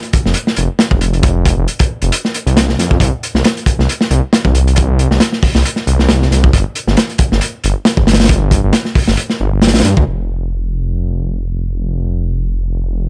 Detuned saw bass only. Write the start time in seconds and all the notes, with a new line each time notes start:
0.26 F1
0.58 F1
0.91 F1
1.58 F1
2.02 F1
2.46 C2
2.79 F2
3.00 C2
3.35 C2
3.79 C2
4.11 C2
4.45 C2
5.11 C2
5.55 C2
5.87 C2
5.99 C2
6.31 C2
6.53 G1
6.87 G1
7.32 G1
7.64 G1
7.97 G1
8.64 G1
9.08 G1
9.40 G1
9.52 G1
9.74 A#1
9.84 G2
9.97 D2
10.07 F1